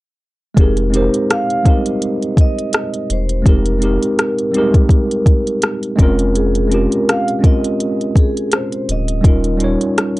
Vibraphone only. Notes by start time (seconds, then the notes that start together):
0.59 G#4
0.96 A#4
1.32 F5
1.67 D#5
2.41 D#5
3.12 C5
3.49 A#4
6.36 G#4
6.73 A#4
7.10 F5
7.46 D#5
8.19 G#4
8.55 C5
8.91 D#5